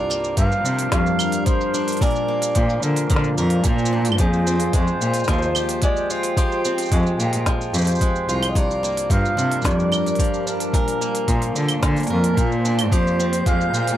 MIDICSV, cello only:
0, 0, Header, 1, 2, 480
1, 0, Start_track
1, 0, Tempo, 545455
1, 1770, Time_signature, 4, 2, 24, 8
1, 12295, End_track
2, 0, Start_track
2, 0, Title_t, "Cello"
2, 0, Program_c, 0, 42
2, 328, Note_on_c, 0, 43, 99
2, 487, Note_off_c, 0, 43, 0
2, 565, Note_on_c, 0, 48, 83
2, 725, Note_off_c, 0, 48, 0
2, 808, Note_on_c, 0, 41, 97
2, 888, Note_off_c, 0, 41, 0
2, 2249, Note_on_c, 0, 46, 86
2, 2407, Note_off_c, 0, 46, 0
2, 2492, Note_on_c, 0, 50, 74
2, 2649, Note_off_c, 0, 50, 0
2, 2730, Note_on_c, 0, 50, 85
2, 2888, Note_off_c, 0, 50, 0
2, 2973, Note_on_c, 0, 41, 108
2, 3129, Note_off_c, 0, 41, 0
2, 3211, Note_on_c, 0, 46, 98
2, 3689, Note_on_c, 0, 41, 93
2, 3702, Note_off_c, 0, 46, 0
2, 4103, Note_off_c, 0, 41, 0
2, 4166, Note_on_c, 0, 41, 98
2, 4326, Note_off_c, 0, 41, 0
2, 4410, Note_on_c, 0, 46, 77
2, 4567, Note_off_c, 0, 46, 0
2, 4646, Note_on_c, 0, 39, 91
2, 4727, Note_off_c, 0, 39, 0
2, 6086, Note_on_c, 0, 41, 95
2, 6246, Note_off_c, 0, 41, 0
2, 6329, Note_on_c, 0, 46, 83
2, 6487, Note_off_c, 0, 46, 0
2, 6803, Note_on_c, 0, 41, 103
2, 6885, Note_off_c, 0, 41, 0
2, 7289, Note_on_c, 0, 36, 77
2, 7368, Note_off_c, 0, 36, 0
2, 8010, Note_on_c, 0, 43, 100
2, 8167, Note_off_c, 0, 43, 0
2, 8251, Note_on_c, 0, 48, 81
2, 8408, Note_off_c, 0, 48, 0
2, 8487, Note_on_c, 0, 41, 99
2, 8567, Note_off_c, 0, 41, 0
2, 9924, Note_on_c, 0, 46, 95
2, 10084, Note_off_c, 0, 46, 0
2, 10171, Note_on_c, 0, 50, 80
2, 10328, Note_off_c, 0, 50, 0
2, 10405, Note_on_c, 0, 50, 90
2, 10565, Note_off_c, 0, 50, 0
2, 10650, Note_on_c, 0, 41, 103
2, 10807, Note_off_c, 0, 41, 0
2, 10887, Note_on_c, 0, 46, 96
2, 11367, Note_on_c, 0, 41, 93
2, 11380, Note_off_c, 0, 46, 0
2, 11782, Note_off_c, 0, 41, 0
2, 11845, Note_on_c, 0, 41, 92
2, 12005, Note_off_c, 0, 41, 0
2, 12084, Note_on_c, 0, 46, 83
2, 12245, Note_off_c, 0, 46, 0
2, 12295, End_track
0, 0, End_of_file